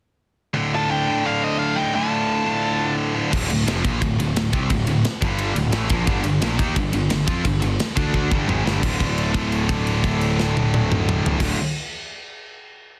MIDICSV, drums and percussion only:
0, 0, Header, 1, 2, 480
1, 0, Start_track
1, 0, Tempo, 345821
1, 765, Time_signature, 4, 2, 24, 8
1, 18041, End_track
2, 0, Start_track
2, 0, Title_t, "Drums"
2, 4623, Note_on_c, 9, 36, 99
2, 4624, Note_on_c, 9, 49, 110
2, 4762, Note_off_c, 9, 36, 0
2, 4763, Note_off_c, 9, 49, 0
2, 4859, Note_on_c, 9, 51, 76
2, 4998, Note_off_c, 9, 51, 0
2, 5103, Note_on_c, 9, 51, 102
2, 5111, Note_on_c, 9, 38, 108
2, 5242, Note_off_c, 9, 51, 0
2, 5250, Note_off_c, 9, 38, 0
2, 5338, Note_on_c, 9, 36, 110
2, 5339, Note_on_c, 9, 51, 79
2, 5477, Note_off_c, 9, 36, 0
2, 5478, Note_off_c, 9, 51, 0
2, 5577, Note_on_c, 9, 36, 91
2, 5577, Note_on_c, 9, 51, 98
2, 5715, Note_off_c, 9, 51, 0
2, 5716, Note_off_c, 9, 36, 0
2, 5827, Note_on_c, 9, 51, 74
2, 5966, Note_off_c, 9, 51, 0
2, 6057, Note_on_c, 9, 51, 97
2, 6065, Note_on_c, 9, 38, 110
2, 6196, Note_off_c, 9, 51, 0
2, 6204, Note_off_c, 9, 38, 0
2, 6287, Note_on_c, 9, 51, 73
2, 6293, Note_on_c, 9, 36, 104
2, 6426, Note_off_c, 9, 51, 0
2, 6431, Note_off_c, 9, 36, 0
2, 6522, Note_on_c, 9, 51, 104
2, 6528, Note_on_c, 9, 36, 85
2, 6661, Note_off_c, 9, 51, 0
2, 6667, Note_off_c, 9, 36, 0
2, 6757, Note_on_c, 9, 51, 73
2, 6896, Note_off_c, 9, 51, 0
2, 7004, Note_on_c, 9, 51, 92
2, 7012, Note_on_c, 9, 38, 109
2, 7143, Note_off_c, 9, 51, 0
2, 7151, Note_off_c, 9, 38, 0
2, 7246, Note_on_c, 9, 36, 99
2, 7247, Note_on_c, 9, 51, 75
2, 7385, Note_off_c, 9, 36, 0
2, 7386, Note_off_c, 9, 51, 0
2, 7475, Note_on_c, 9, 51, 92
2, 7613, Note_off_c, 9, 51, 0
2, 7719, Note_on_c, 9, 51, 75
2, 7857, Note_off_c, 9, 51, 0
2, 7944, Note_on_c, 9, 51, 97
2, 7952, Note_on_c, 9, 38, 119
2, 8083, Note_off_c, 9, 51, 0
2, 8091, Note_off_c, 9, 38, 0
2, 8181, Note_on_c, 9, 51, 73
2, 8192, Note_on_c, 9, 36, 98
2, 8320, Note_off_c, 9, 51, 0
2, 8331, Note_off_c, 9, 36, 0
2, 8426, Note_on_c, 9, 51, 94
2, 8430, Note_on_c, 9, 36, 109
2, 8565, Note_off_c, 9, 51, 0
2, 8569, Note_off_c, 9, 36, 0
2, 8658, Note_on_c, 9, 51, 69
2, 8796, Note_off_c, 9, 51, 0
2, 8908, Note_on_c, 9, 51, 106
2, 8916, Note_on_c, 9, 38, 112
2, 9047, Note_off_c, 9, 51, 0
2, 9055, Note_off_c, 9, 38, 0
2, 9149, Note_on_c, 9, 36, 109
2, 9155, Note_on_c, 9, 51, 75
2, 9288, Note_off_c, 9, 36, 0
2, 9294, Note_off_c, 9, 51, 0
2, 9385, Note_on_c, 9, 36, 87
2, 9387, Note_on_c, 9, 51, 106
2, 9524, Note_off_c, 9, 36, 0
2, 9526, Note_off_c, 9, 51, 0
2, 9618, Note_on_c, 9, 51, 79
2, 9757, Note_off_c, 9, 51, 0
2, 9857, Note_on_c, 9, 51, 109
2, 9865, Note_on_c, 9, 38, 109
2, 9995, Note_off_c, 9, 51, 0
2, 10004, Note_off_c, 9, 38, 0
2, 10100, Note_on_c, 9, 36, 101
2, 10102, Note_on_c, 9, 51, 77
2, 10239, Note_off_c, 9, 36, 0
2, 10240, Note_off_c, 9, 51, 0
2, 10335, Note_on_c, 9, 51, 97
2, 10340, Note_on_c, 9, 36, 90
2, 10474, Note_off_c, 9, 51, 0
2, 10478, Note_off_c, 9, 36, 0
2, 10576, Note_on_c, 9, 51, 70
2, 10715, Note_off_c, 9, 51, 0
2, 10821, Note_on_c, 9, 51, 101
2, 10829, Note_on_c, 9, 38, 111
2, 10960, Note_off_c, 9, 51, 0
2, 10968, Note_off_c, 9, 38, 0
2, 11060, Note_on_c, 9, 36, 106
2, 11061, Note_on_c, 9, 51, 76
2, 11199, Note_off_c, 9, 36, 0
2, 11200, Note_off_c, 9, 51, 0
2, 11299, Note_on_c, 9, 36, 63
2, 11438, Note_off_c, 9, 36, 0
2, 11541, Note_on_c, 9, 36, 111
2, 11680, Note_off_c, 9, 36, 0
2, 11785, Note_on_c, 9, 45, 94
2, 11924, Note_off_c, 9, 45, 0
2, 12039, Note_on_c, 9, 38, 92
2, 12178, Note_off_c, 9, 38, 0
2, 12258, Note_on_c, 9, 36, 102
2, 12262, Note_on_c, 9, 49, 87
2, 12397, Note_off_c, 9, 36, 0
2, 12401, Note_off_c, 9, 49, 0
2, 12497, Note_on_c, 9, 36, 63
2, 12505, Note_on_c, 9, 49, 42
2, 12636, Note_off_c, 9, 36, 0
2, 12644, Note_off_c, 9, 49, 0
2, 12739, Note_on_c, 9, 57, 48
2, 12878, Note_off_c, 9, 57, 0
2, 12970, Note_on_c, 9, 36, 64
2, 12970, Note_on_c, 9, 49, 46
2, 13108, Note_off_c, 9, 49, 0
2, 13109, Note_off_c, 9, 36, 0
2, 13215, Note_on_c, 9, 57, 47
2, 13354, Note_off_c, 9, 57, 0
2, 13452, Note_on_c, 9, 36, 73
2, 13461, Note_on_c, 9, 49, 52
2, 13591, Note_off_c, 9, 36, 0
2, 13599, Note_off_c, 9, 49, 0
2, 13696, Note_on_c, 9, 57, 54
2, 13835, Note_off_c, 9, 57, 0
2, 13934, Note_on_c, 9, 36, 66
2, 13938, Note_on_c, 9, 49, 51
2, 14073, Note_off_c, 9, 36, 0
2, 14077, Note_off_c, 9, 49, 0
2, 14174, Note_on_c, 9, 57, 52
2, 14313, Note_off_c, 9, 57, 0
2, 14429, Note_on_c, 9, 38, 88
2, 14567, Note_off_c, 9, 38, 0
2, 14670, Note_on_c, 9, 48, 96
2, 14809, Note_off_c, 9, 48, 0
2, 14906, Note_on_c, 9, 48, 101
2, 15044, Note_off_c, 9, 48, 0
2, 15151, Note_on_c, 9, 47, 99
2, 15290, Note_off_c, 9, 47, 0
2, 15389, Note_on_c, 9, 45, 109
2, 15528, Note_off_c, 9, 45, 0
2, 15631, Note_on_c, 9, 43, 108
2, 15770, Note_off_c, 9, 43, 0
2, 15826, Note_on_c, 9, 36, 108
2, 15827, Note_on_c, 9, 49, 104
2, 15836, Note_on_c, 9, 38, 97
2, 15965, Note_off_c, 9, 36, 0
2, 15966, Note_off_c, 9, 49, 0
2, 15975, Note_off_c, 9, 38, 0
2, 18041, End_track
0, 0, End_of_file